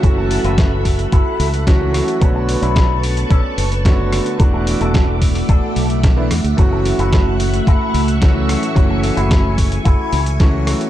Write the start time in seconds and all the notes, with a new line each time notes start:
Already playing: A4 E5 F#5
0.03 F#1 E3 F#3 A3 C#4 F#4 B5, muted clean electric guitar stroke, kick, closed hi-hat
0.17 muted clean electric guitar stroke
0.30 muted clean electric guitar stroke, open hi-hat
0.44 F#1 E4 F#4 B4, closed hi-hat
0.58 kick, snare, closed hi-hat
0.85 kick, open hi-hat
0.99 closed hi-hat
1.12 F#1 E4 F#4 A4, kick, closed hi-hat
1.40 C#2, open hi-hat
1.54 closed hi-hat
1.67 E3 F#3 A3 C#4 F#4, kick, snare, closed hi-hat
1.81 muted clean electric guitar stroke
1.94 cross-stick, open hi-hat
2.08 muted clean electric guitar stroke, closed hi-hat
2.21 B1 D3 A3 B3 F#4 B4 C#5 A5 C#6, muted clean electric guitar stroke, kick, closed hi-hat
2.35 muted clean electric guitar stroke
2.48 muted clean electric guitar stroke, open hi-hat
2.62 B1 C#4 D4 E4, closed hi-hat
2.76 kick, snare, closed hi-hat
3.03 open hi-hat
3.17 closed hi-hat
3.30 B1 C#4 D4 A4, kick, closed hi-hat
3.58 F#1, open hi-hat
3.72 closed hi-hat
3.85 D3 A3 B3 F#4 C#5, kick, snare, closed hi-hat
3.98 muted clean electric guitar stroke
4.13 cross-stick, open hi-hat
4.26 muted clean electric guitar stroke, closed hi-hat
4.39 E1 E3 A3 B3 D4 F#4 E5 F#5 D6, muted clean electric guitar stroke, kick, closed hi-hat
4.53 muted clean electric guitar stroke
4.67 muted clean electric guitar stroke, open hi-hat
4.81 E1 D4 F#4 A4, closed hi-hat
4.94 kick, snare, closed hi-hat
5.22 kick, open hi-hat
5.35 open hi-hat
5.48 E1 D4 F#4 A4, kick, closed hi-hat
5.76 B1, open hi-hat
5.90 closed hi-hat
6.04 kick, snare, closed hi-hat
6.16 E3 A3 B3 D4 E4, muted clean electric guitar stroke
6.31 E2, cross-stick, open hi-hat
6.44 D2, muted clean electric guitar stroke, closed hi-hat
6.57 F#1 E3 F#3 A3 C#4 F#4 C#6, muted clean electric guitar stroke, kick, closed hi-hat
6.71 muted clean electric guitar stroke
6.85 muted clean electric guitar stroke, open hi-hat
6.99 F#1 E4 F#4 A4, closed hi-hat
7.13 kick, snare, closed hi-hat
7.40 open hi-hat
7.54 closed hi-hat
7.67 F#1 E4 F#4 A4, kick, closed hi-hat
7.94 C#2, open hi-hat
8.08 closed hi-hat
8.21 E3 F#3 A3 C#4 F#4, kick, snare, closed hi-hat
8.35 muted clean electric guitar stroke
8.49 cross-stick, open hi-hat
8.62 muted clean electric guitar stroke, closed hi-hat
8.75 F#1 E3 F#3 A3 C#4 F#4 G#5, muted clean electric guitar stroke, kick, closed hi-hat
8.89 muted clean electric guitar stroke
9.03 muted clean electric guitar stroke, open hi-hat
9.16 F#1 E4 F#4 G#4, closed hi-hat
9.31 kick, snare, closed hi-hat
9.58 kick, open hi-hat
9.72 closed hi-hat
9.85 F#1 E4 F#4 A4, kick, closed hi-hat
10.13 C#2, open hi-hat
10.26 closed hi-hat
10.40 E3 F#3 A3 C#4 F#4, kick, snare, closed hi-hat
10.53 muted clean electric guitar stroke
10.67 cross-stick, open hi-hat
10.80 muted clean electric guitar stroke, closed hi-hat